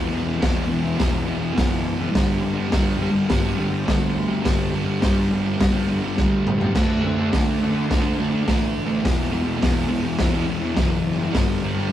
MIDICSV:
0, 0, Header, 1, 4, 480
1, 0, Start_track
1, 0, Key_signature, 1, "minor"
1, 0, Tempo, 575264
1, 1782, Time_signature, 4, 2, 24, 8
1, 9947, End_track
2, 0, Start_track
2, 0, Title_t, "Distorted electric guitar"
2, 0, Program_c, 0, 30
2, 0, Note_on_c, 0, 52, 120
2, 60, Note_on_c, 0, 40, 68
2, 80, Note_on_c, 0, 47, 85
2, 87, Note_off_c, 0, 52, 0
2, 97, Note_on_c, 0, 52, 75
2, 181, Note_off_c, 0, 52, 0
2, 191, Note_on_c, 0, 52, 84
2, 215, Note_off_c, 0, 47, 0
2, 225, Note_on_c, 0, 47, 68
2, 287, Note_off_c, 0, 40, 0
2, 297, Note_on_c, 0, 40, 91
2, 312, Note_off_c, 0, 47, 0
2, 322, Note_on_c, 0, 47, 96
2, 329, Note_off_c, 0, 52, 0
2, 339, Note_on_c, 0, 52, 92
2, 536, Note_off_c, 0, 40, 0
2, 546, Note_on_c, 0, 40, 82
2, 556, Note_off_c, 0, 47, 0
2, 566, Note_on_c, 0, 47, 94
2, 570, Note_off_c, 0, 52, 0
2, 580, Note_on_c, 0, 52, 94
2, 661, Note_off_c, 0, 52, 0
2, 671, Note_on_c, 0, 52, 85
2, 695, Note_off_c, 0, 47, 0
2, 705, Note_on_c, 0, 47, 68
2, 784, Note_off_c, 0, 40, 0
2, 794, Note_on_c, 0, 40, 77
2, 805, Note_off_c, 0, 47, 0
2, 815, Note_on_c, 0, 47, 80
2, 823, Note_off_c, 0, 52, 0
2, 833, Note_on_c, 0, 52, 84
2, 889, Note_off_c, 0, 52, 0
2, 899, Note_on_c, 0, 52, 63
2, 932, Note_off_c, 0, 47, 0
2, 942, Note_on_c, 0, 47, 60
2, 1011, Note_off_c, 0, 40, 0
2, 1021, Note_on_c, 0, 40, 74
2, 1032, Note_off_c, 0, 47, 0
2, 1042, Note_on_c, 0, 47, 87
2, 1048, Note_off_c, 0, 52, 0
2, 1058, Note_on_c, 0, 52, 76
2, 1133, Note_off_c, 0, 52, 0
2, 1143, Note_on_c, 0, 52, 86
2, 1172, Note_off_c, 0, 47, 0
2, 1182, Note_on_c, 0, 47, 66
2, 1258, Note_off_c, 0, 40, 0
2, 1268, Note_on_c, 0, 40, 104
2, 1275, Note_off_c, 0, 47, 0
2, 1285, Note_on_c, 0, 47, 119
2, 1292, Note_off_c, 0, 52, 0
2, 1302, Note_on_c, 0, 52, 113
2, 1623, Note_off_c, 0, 52, 0
2, 1633, Note_on_c, 0, 52, 73
2, 1664, Note_off_c, 0, 47, 0
2, 1674, Note_on_c, 0, 47, 59
2, 1751, Note_off_c, 0, 40, 0
2, 1753, Note_off_c, 0, 52, 0
2, 1761, Note_on_c, 0, 43, 93
2, 1774, Note_off_c, 0, 47, 0
2, 1777, Note_on_c, 0, 50, 121
2, 1795, Note_on_c, 0, 55, 104
2, 1993, Note_off_c, 0, 43, 0
2, 1996, Note_on_c, 0, 43, 79
2, 2006, Note_off_c, 0, 50, 0
2, 2016, Note_on_c, 0, 50, 80
2, 2032, Note_off_c, 0, 55, 0
2, 2035, Note_on_c, 0, 55, 95
2, 2113, Note_off_c, 0, 55, 0
2, 2117, Note_on_c, 0, 55, 74
2, 2150, Note_off_c, 0, 50, 0
2, 2160, Note_on_c, 0, 50, 65
2, 2234, Note_off_c, 0, 43, 0
2, 2238, Note_on_c, 0, 43, 91
2, 2248, Note_off_c, 0, 50, 0
2, 2258, Note_on_c, 0, 50, 91
2, 2274, Note_off_c, 0, 55, 0
2, 2278, Note_on_c, 0, 55, 102
2, 2476, Note_off_c, 0, 43, 0
2, 2479, Note_on_c, 0, 43, 88
2, 2482, Note_off_c, 0, 50, 0
2, 2492, Note_on_c, 0, 50, 81
2, 2508, Note_off_c, 0, 55, 0
2, 2511, Note_on_c, 0, 55, 100
2, 2588, Note_off_c, 0, 55, 0
2, 2598, Note_on_c, 0, 55, 80
2, 2623, Note_off_c, 0, 50, 0
2, 2633, Note_on_c, 0, 50, 64
2, 2704, Note_off_c, 0, 43, 0
2, 2714, Note_on_c, 0, 43, 85
2, 2724, Note_off_c, 0, 50, 0
2, 2734, Note_on_c, 0, 50, 92
2, 2739, Note_off_c, 0, 55, 0
2, 2749, Note_on_c, 0, 55, 93
2, 2824, Note_off_c, 0, 55, 0
2, 2834, Note_on_c, 0, 55, 69
2, 2862, Note_off_c, 0, 50, 0
2, 2872, Note_on_c, 0, 50, 60
2, 2949, Note_off_c, 0, 43, 0
2, 2959, Note_on_c, 0, 43, 75
2, 2972, Note_off_c, 0, 50, 0
2, 2982, Note_on_c, 0, 50, 83
2, 2989, Note_off_c, 0, 55, 0
2, 2999, Note_on_c, 0, 55, 91
2, 3075, Note_off_c, 0, 55, 0
2, 3085, Note_on_c, 0, 55, 80
2, 3108, Note_off_c, 0, 50, 0
2, 3118, Note_on_c, 0, 50, 74
2, 3200, Note_off_c, 0, 43, 0
2, 3210, Note_on_c, 0, 43, 105
2, 3218, Note_off_c, 0, 50, 0
2, 3228, Note_on_c, 0, 50, 105
2, 3234, Note_off_c, 0, 55, 0
2, 3244, Note_on_c, 0, 55, 127
2, 3558, Note_off_c, 0, 55, 0
2, 3568, Note_on_c, 0, 55, 66
2, 3596, Note_off_c, 0, 50, 0
2, 3606, Note_on_c, 0, 50, 63
2, 3672, Note_off_c, 0, 43, 0
2, 3682, Note_on_c, 0, 43, 109
2, 3691, Note_off_c, 0, 50, 0
2, 3701, Note_on_c, 0, 50, 101
2, 3705, Note_off_c, 0, 55, 0
2, 3715, Note_on_c, 0, 55, 112
2, 3919, Note_off_c, 0, 43, 0
2, 3929, Note_on_c, 0, 43, 71
2, 3941, Note_off_c, 0, 50, 0
2, 3951, Note_on_c, 0, 50, 80
2, 3957, Note_off_c, 0, 55, 0
2, 3967, Note_on_c, 0, 55, 80
2, 4038, Note_off_c, 0, 55, 0
2, 4048, Note_on_c, 0, 55, 78
2, 4070, Note_off_c, 0, 50, 0
2, 4080, Note_on_c, 0, 50, 62
2, 4160, Note_off_c, 0, 43, 0
2, 4170, Note_on_c, 0, 43, 89
2, 4177, Note_off_c, 0, 50, 0
2, 4187, Note_on_c, 0, 50, 85
2, 4189, Note_off_c, 0, 55, 0
2, 4199, Note_on_c, 0, 55, 104
2, 4406, Note_off_c, 0, 43, 0
2, 4416, Note_on_c, 0, 43, 89
2, 4425, Note_off_c, 0, 50, 0
2, 4435, Note_on_c, 0, 50, 90
2, 4441, Note_off_c, 0, 55, 0
2, 4451, Note_on_c, 0, 55, 87
2, 4513, Note_off_c, 0, 55, 0
2, 4523, Note_on_c, 0, 55, 74
2, 4553, Note_off_c, 0, 50, 0
2, 4563, Note_on_c, 0, 50, 64
2, 4644, Note_off_c, 0, 43, 0
2, 4654, Note_on_c, 0, 43, 73
2, 4668, Note_off_c, 0, 50, 0
2, 4678, Note_off_c, 0, 55, 0
2, 4678, Note_on_c, 0, 50, 88
2, 4688, Note_on_c, 0, 55, 97
2, 4766, Note_off_c, 0, 55, 0
2, 4776, Note_on_c, 0, 55, 78
2, 4806, Note_off_c, 0, 50, 0
2, 4816, Note_on_c, 0, 50, 56
2, 4890, Note_off_c, 0, 43, 0
2, 4900, Note_on_c, 0, 43, 74
2, 4906, Note_off_c, 0, 50, 0
2, 4916, Note_on_c, 0, 50, 79
2, 4924, Note_off_c, 0, 55, 0
2, 4934, Note_on_c, 0, 55, 78
2, 5006, Note_off_c, 0, 55, 0
2, 5016, Note_on_c, 0, 55, 70
2, 5045, Note_off_c, 0, 50, 0
2, 5055, Note_on_c, 0, 50, 72
2, 5125, Note_off_c, 0, 43, 0
2, 5135, Note_on_c, 0, 43, 104
2, 5144, Note_off_c, 0, 50, 0
2, 5154, Note_on_c, 0, 50, 100
2, 5163, Note_off_c, 0, 55, 0
2, 5173, Note_on_c, 0, 55, 110
2, 5480, Note_off_c, 0, 55, 0
2, 5490, Note_on_c, 0, 55, 78
2, 5517, Note_off_c, 0, 50, 0
2, 5527, Note_on_c, 0, 50, 58
2, 5604, Note_off_c, 0, 50, 0
2, 5605, Note_off_c, 0, 55, 0
2, 5607, Note_off_c, 0, 43, 0
2, 5614, Note_on_c, 0, 50, 97
2, 5634, Note_on_c, 0, 57, 94
2, 5651, Note_on_c, 0, 62, 101
2, 5840, Note_off_c, 0, 50, 0
2, 5850, Note_on_c, 0, 50, 74
2, 5860, Note_off_c, 0, 57, 0
2, 5870, Note_on_c, 0, 57, 82
2, 5879, Note_off_c, 0, 62, 0
2, 5889, Note_on_c, 0, 62, 90
2, 5964, Note_off_c, 0, 62, 0
2, 5974, Note_on_c, 0, 62, 83
2, 6001, Note_off_c, 0, 57, 0
2, 6011, Note_on_c, 0, 57, 65
2, 6082, Note_off_c, 0, 50, 0
2, 6092, Note_on_c, 0, 50, 91
2, 6102, Note_off_c, 0, 57, 0
2, 6112, Note_on_c, 0, 57, 104
2, 6116, Note_off_c, 0, 62, 0
2, 6126, Note_on_c, 0, 62, 96
2, 6318, Note_off_c, 0, 50, 0
2, 6328, Note_on_c, 0, 50, 83
2, 6339, Note_off_c, 0, 57, 0
2, 6349, Note_on_c, 0, 57, 87
2, 6356, Note_off_c, 0, 62, 0
2, 6366, Note_on_c, 0, 62, 90
2, 6424, Note_off_c, 0, 62, 0
2, 6434, Note_on_c, 0, 62, 68
2, 6463, Note_off_c, 0, 57, 0
2, 6473, Note_on_c, 0, 57, 65
2, 6550, Note_off_c, 0, 50, 0
2, 6560, Note_on_c, 0, 50, 77
2, 6574, Note_off_c, 0, 57, 0
2, 6584, Note_on_c, 0, 57, 76
2, 6589, Note_off_c, 0, 62, 0
2, 6599, Note_on_c, 0, 62, 90
2, 6672, Note_off_c, 0, 62, 0
2, 6682, Note_on_c, 0, 62, 69
2, 6706, Note_off_c, 0, 57, 0
2, 6716, Note_on_c, 0, 57, 62
2, 6793, Note_off_c, 0, 50, 0
2, 6803, Note_on_c, 0, 50, 73
2, 6811, Note_off_c, 0, 57, 0
2, 6821, Note_on_c, 0, 57, 75
2, 6827, Note_off_c, 0, 62, 0
2, 6837, Note_on_c, 0, 62, 89
2, 6907, Note_off_c, 0, 62, 0
2, 6918, Note_on_c, 0, 62, 79
2, 6947, Note_off_c, 0, 57, 0
2, 6957, Note_on_c, 0, 57, 68
2, 7020, Note_off_c, 0, 50, 0
2, 7030, Note_on_c, 0, 50, 108
2, 7040, Note_off_c, 0, 57, 0
2, 7050, Note_on_c, 0, 57, 105
2, 7056, Note_off_c, 0, 62, 0
2, 7066, Note_on_c, 0, 62, 123
2, 7382, Note_off_c, 0, 62, 0
2, 7392, Note_on_c, 0, 62, 75
2, 7413, Note_off_c, 0, 57, 0
2, 7423, Note_on_c, 0, 57, 61
2, 7507, Note_on_c, 0, 40, 104
2, 7514, Note_off_c, 0, 50, 0
2, 7515, Note_off_c, 0, 62, 0
2, 7530, Note_off_c, 0, 57, 0
2, 7533, Note_on_c, 0, 47, 106
2, 7544, Note_on_c, 0, 52, 105
2, 7744, Note_off_c, 0, 40, 0
2, 7754, Note_on_c, 0, 40, 76
2, 7762, Note_off_c, 0, 47, 0
2, 7772, Note_on_c, 0, 47, 76
2, 7777, Note_off_c, 0, 52, 0
2, 7787, Note_on_c, 0, 52, 92
2, 7860, Note_off_c, 0, 52, 0
2, 7870, Note_on_c, 0, 52, 77
2, 7897, Note_off_c, 0, 47, 0
2, 7907, Note_on_c, 0, 47, 68
2, 7973, Note_off_c, 0, 40, 0
2, 7983, Note_on_c, 0, 40, 83
2, 7997, Note_off_c, 0, 47, 0
2, 8007, Note_on_c, 0, 47, 89
2, 8015, Note_off_c, 0, 52, 0
2, 8025, Note_on_c, 0, 52, 94
2, 8221, Note_off_c, 0, 40, 0
2, 8231, Note_on_c, 0, 40, 82
2, 8237, Note_off_c, 0, 47, 0
2, 8247, Note_on_c, 0, 47, 83
2, 8262, Note_off_c, 0, 52, 0
2, 8272, Note_on_c, 0, 52, 97
2, 8357, Note_off_c, 0, 52, 0
2, 8367, Note_on_c, 0, 52, 70
2, 8392, Note_off_c, 0, 47, 0
2, 8402, Note_on_c, 0, 47, 59
2, 8468, Note_off_c, 0, 40, 0
2, 8478, Note_on_c, 0, 40, 70
2, 8490, Note_off_c, 0, 47, 0
2, 8500, Note_on_c, 0, 47, 81
2, 8502, Note_off_c, 0, 52, 0
2, 8512, Note_on_c, 0, 52, 87
2, 8598, Note_off_c, 0, 52, 0
2, 8608, Note_on_c, 0, 52, 76
2, 8635, Note_off_c, 0, 47, 0
2, 8645, Note_on_c, 0, 47, 53
2, 8719, Note_off_c, 0, 40, 0
2, 8729, Note_on_c, 0, 40, 69
2, 8737, Note_off_c, 0, 47, 0
2, 8747, Note_on_c, 0, 47, 80
2, 8754, Note_off_c, 0, 52, 0
2, 8764, Note_on_c, 0, 52, 81
2, 8833, Note_off_c, 0, 52, 0
2, 8843, Note_on_c, 0, 52, 89
2, 8875, Note_off_c, 0, 47, 0
2, 8885, Note_on_c, 0, 47, 70
2, 8947, Note_off_c, 0, 40, 0
2, 8957, Note_on_c, 0, 40, 109
2, 8965, Note_off_c, 0, 47, 0
2, 8975, Note_on_c, 0, 47, 113
2, 8987, Note_off_c, 0, 52, 0
2, 8997, Note_on_c, 0, 52, 123
2, 9309, Note_off_c, 0, 52, 0
2, 9319, Note_on_c, 0, 52, 75
2, 9346, Note_off_c, 0, 47, 0
2, 9356, Note_on_c, 0, 47, 64
2, 9434, Note_off_c, 0, 40, 0
2, 9436, Note_off_c, 0, 52, 0
2, 9437, Note_on_c, 0, 43, 99
2, 9454, Note_off_c, 0, 47, 0
2, 9460, Note_on_c, 0, 50, 97
2, 9471, Note_on_c, 0, 55, 99
2, 9672, Note_off_c, 0, 43, 0
2, 9675, Note_on_c, 0, 43, 71
2, 9683, Note_off_c, 0, 50, 0
2, 9693, Note_on_c, 0, 50, 87
2, 9707, Note_off_c, 0, 55, 0
2, 9710, Note_on_c, 0, 55, 90
2, 9797, Note_off_c, 0, 55, 0
2, 9800, Note_on_c, 0, 55, 84
2, 9828, Note_off_c, 0, 50, 0
2, 9838, Note_on_c, 0, 50, 63
2, 9917, Note_off_c, 0, 43, 0
2, 9920, Note_on_c, 0, 43, 98
2, 9932, Note_off_c, 0, 50, 0
2, 9947, Note_off_c, 0, 43, 0
2, 9947, Note_off_c, 0, 55, 0
2, 9947, End_track
3, 0, Start_track
3, 0, Title_t, "Picked electric bass"
3, 0, Program_c, 1, 34
3, 116, Note_on_c, 1, 28, 86
3, 313, Note_off_c, 1, 28, 0
3, 364, Note_on_c, 1, 28, 94
3, 558, Note_off_c, 1, 28, 0
3, 598, Note_on_c, 1, 28, 92
3, 795, Note_off_c, 1, 28, 0
3, 837, Note_on_c, 1, 28, 98
3, 1034, Note_off_c, 1, 28, 0
3, 1066, Note_on_c, 1, 28, 100
3, 1268, Note_off_c, 1, 28, 0
3, 1315, Note_on_c, 1, 30, 84
3, 1719, Note_off_c, 1, 30, 0
3, 1804, Note_on_c, 1, 31, 99
3, 2000, Note_off_c, 1, 31, 0
3, 2043, Note_on_c, 1, 31, 85
3, 2240, Note_off_c, 1, 31, 0
3, 2278, Note_on_c, 1, 31, 98
3, 2477, Note_off_c, 1, 31, 0
3, 2511, Note_on_c, 1, 31, 89
3, 2713, Note_off_c, 1, 31, 0
3, 2760, Note_on_c, 1, 31, 105
3, 2959, Note_off_c, 1, 31, 0
3, 2996, Note_on_c, 1, 31, 91
3, 3197, Note_off_c, 1, 31, 0
3, 3238, Note_on_c, 1, 38, 82
3, 3438, Note_off_c, 1, 38, 0
3, 3463, Note_on_c, 1, 38, 97
3, 3670, Note_off_c, 1, 38, 0
3, 3716, Note_on_c, 1, 31, 111
3, 3918, Note_off_c, 1, 31, 0
3, 3941, Note_on_c, 1, 31, 92
3, 4149, Note_off_c, 1, 31, 0
3, 4205, Note_on_c, 1, 31, 97
3, 4402, Note_off_c, 1, 31, 0
3, 4425, Note_on_c, 1, 31, 91
3, 4631, Note_off_c, 1, 31, 0
3, 4689, Note_on_c, 1, 31, 105
3, 4885, Note_off_c, 1, 31, 0
3, 4908, Note_on_c, 1, 31, 86
3, 5113, Note_off_c, 1, 31, 0
3, 5164, Note_on_c, 1, 38, 88
3, 5567, Note_off_c, 1, 38, 0
3, 5643, Note_on_c, 1, 38, 106
3, 5841, Note_off_c, 1, 38, 0
3, 5876, Note_on_c, 1, 38, 98
3, 6077, Note_off_c, 1, 38, 0
3, 6125, Note_on_c, 1, 38, 103
3, 6322, Note_off_c, 1, 38, 0
3, 6370, Note_on_c, 1, 38, 94
3, 6565, Note_off_c, 1, 38, 0
3, 6599, Note_on_c, 1, 38, 100
3, 6799, Note_off_c, 1, 38, 0
3, 6840, Note_on_c, 1, 38, 91
3, 7039, Note_off_c, 1, 38, 0
3, 7075, Note_on_c, 1, 33, 86
3, 7276, Note_off_c, 1, 33, 0
3, 7323, Note_on_c, 1, 33, 92
3, 7520, Note_off_c, 1, 33, 0
3, 7552, Note_on_c, 1, 28, 96
3, 7754, Note_off_c, 1, 28, 0
3, 7789, Note_on_c, 1, 28, 92
3, 7992, Note_off_c, 1, 28, 0
3, 8038, Note_on_c, 1, 28, 93
3, 8237, Note_off_c, 1, 28, 0
3, 8262, Note_on_c, 1, 28, 85
3, 8467, Note_off_c, 1, 28, 0
3, 8511, Note_on_c, 1, 28, 102
3, 8712, Note_off_c, 1, 28, 0
3, 8755, Note_on_c, 1, 28, 90
3, 8954, Note_off_c, 1, 28, 0
3, 8990, Note_on_c, 1, 30, 90
3, 9395, Note_off_c, 1, 30, 0
3, 9477, Note_on_c, 1, 31, 101
3, 9675, Note_off_c, 1, 31, 0
3, 9711, Note_on_c, 1, 31, 93
3, 9911, Note_off_c, 1, 31, 0
3, 9947, End_track
4, 0, Start_track
4, 0, Title_t, "Drums"
4, 354, Note_on_c, 9, 36, 115
4, 356, Note_on_c, 9, 38, 127
4, 359, Note_on_c, 9, 46, 73
4, 437, Note_off_c, 9, 36, 0
4, 440, Note_off_c, 9, 38, 0
4, 442, Note_off_c, 9, 46, 0
4, 831, Note_on_c, 9, 38, 115
4, 834, Note_on_c, 9, 46, 63
4, 835, Note_on_c, 9, 36, 111
4, 915, Note_off_c, 9, 38, 0
4, 917, Note_off_c, 9, 46, 0
4, 918, Note_off_c, 9, 36, 0
4, 1316, Note_on_c, 9, 36, 109
4, 1316, Note_on_c, 9, 38, 96
4, 1319, Note_on_c, 9, 46, 64
4, 1399, Note_off_c, 9, 38, 0
4, 1400, Note_off_c, 9, 36, 0
4, 1402, Note_off_c, 9, 46, 0
4, 1796, Note_on_c, 9, 38, 111
4, 1797, Note_on_c, 9, 36, 117
4, 1798, Note_on_c, 9, 46, 59
4, 1879, Note_off_c, 9, 38, 0
4, 1881, Note_off_c, 9, 36, 0
4, 1882, Note_off_c, 9, 46, 0
4, 2271, Note_on_c, 9, 38, 117
4, 2274, Note_on_c, 9, 46, 69
4, 2278, Note_on_c, 9, 36, 126
4, 2355, Note_off_c, 9, 38, 0
4, 2357, Note_off_c, 9, 46, 0
4, 2361, Note_off_c, 9, 36, 0
4, 2751, Note_on_c, 9, 38, 115
4, 2754, Note_on_c, 9, 46, 61
4, 2757, Note_on_c, 9, 36, 109
4, 2835, Note_off_c, 9, 38, 0
4, 2837, Note_off_c, 9, 46, 0
4, 2840, Note_off_c, 9, 36, 0
4, 3238, Note_on_c, 9, 38, 106
4, 3240, Note_on_c, 9, 36, 94
4, 3241, Note_on_c, 9, 46, 54
4, 3322, Note_off_c, 9, 38, 0
4, 3323, Note_off_c, 9, 36, 0
4, 3324, Note_off_c, 9, 46, 0
4, 3715, Note_on_c, 9, 38, 109
4, 3718, Note_on_c, 9, 46, 64
4, 3720, Note_on_c, 9, 36, 112
4, 3799, Note_off_c, 9, 38, 0
4, 3801, Note_off_c, 9, 46, 0
4, 3803, Note_off_c, 9, 36, 0
4, 4190, Note_on_c, 9, 38, 122
4, 4193, Note_on_c, 9, 46, 68
4, 4199, Note_on_c, 9, 36, 122
4, 4274, Note_off_c, 9, 38, 0
4, 4276, Note_off_c, 9, 46, 0
4, 4283, Note_off_c, 9, 36, 0
4, 4677, Note_on_c, 9, 38, 117
4, 4680, Note_on_c, 9, 46, 64
4, 4681, Note_on_c, 9, 36, 115
4, 4761, Note_off_c, 9, 38, 0
4, 4763, Note_off_c, 9, 46, 0
4, 4764, Note_off_c, 9, 36, 0
4, 5150, Note_on_c, 9, 38, 61
4, 5159, Note_on_c, 9, 36, 106
4, 5233, Note_off_c, 9, 38, 0
4, 5243, Note_off_c, 9, 36, 0
4, 5396, Note_on_c, 9, 45, 98
4, 5479, Note_off_c, 9, 45, 0
4, 5516, Note_on_c, 9, 43, 96
4, 5600, Note_off_c, 9, 43, 0
4, 5633, Note_on_c, 9, 38, 104
4, 5635, Note_on_c, 9, 49, 95
4, 5638, Note_on_c, 9, 36, 123
4, 5716, Note_off_c, 9, 38, 0
4, 5719, Note_off_c, 9, 49, 0
4, 5721, Note_off_c, 9, 36, 0
4, 6116, Note_on_c, 9, 38, 116
4, 6118, Note_on_c, 9, 36, 114
4, 6118, Note_on_c, 9, 46, 68
4, 6199, Note_off_c, 9, 38, 0
4, 6201, Note_off_c, 9, 36, 0
4, 6202, Note_off_c, 9, 46, 0
4, 6598, Note_on_c, 9, 36, 113
4, 6600, Note_on_c, 9, 38, 104
4, 6603, Note_on_c, 9, 46, 54
4, 6681, Note_off_c, 9, 36, 0
4, 6684, Note_off_c, 9, 38, 0
4, 6686, Note_off_c, 9, 46, 0
4, 7074, Note_on_c, 9, 36, 103
4, 7074, Note_on_c, 9, 38, 98
4, 7077, Note_on_c, 9, 46, 64
4, 7158, Note_off_c, 9, 36, 0
4, 7158, Note_off_c, 9, 38, 0
4, 7160, Note_off_c, 9, 46, 0
4, 7553, Note_on_c, 9, 36, 105
4, 7554, Note_on_c, 9, 38, 110
4, 7557, Note_on_c, 9, 46, 66
4, 7636, Note_off_c, 9, 36, 0
4, 7638, Note_off_c, 9, 38, 0
4, 7640, Note_off_c, 9, 46, 0
4, 8032, Note_on_c, 9, 36, 123
4, 8034, Note_on_c, 9, 38, 123
4, 8037, Note_on_c, 9, 46, 74
4, 8115, Note_off_c, 9, 36, 0
4, 8117, Note_off_c, 9, 38, 0
4, 8120, Note_off_c, 9, 46, 0
4, 8500, Note_on_c, 9, 38, 115
4, 8502, Note_on_c, 9, 46, 69
4, 8507, Note_on_c, 9, 36, 110
4, 8583, Note_off_c, 9, 38, 0
4, 8586, Note_off_c, 9, 46, 0
4, 8591, Note_off_c, 9, 36, 0
4, 8983, Note_on_c, 9, 38, 102
4, 8986, Note_on_c, 9, 46, 66
4, 8989, Note_on_c, 9, 36, 113
4, 9067, Note_off_c, 9, 38, 0
4, 9069, Note_off_c, 9, 46, 0
4, 9072, Note_off_c, 9, 36, 0
4, 9468, Note_on_c, 9, 38, 109
4, 9470, Note_on_c, 9, 46, 66
4, 9471, Note_on_c, 9, 36, 112
4, 9551, Note_off_c, 9, 38, 0
4, 9554, Note_off_c, 9, 46, 0
4, 9555, Note_off_c, 9, 36, 0
4, 9947, End_track
0, 0, End_of_file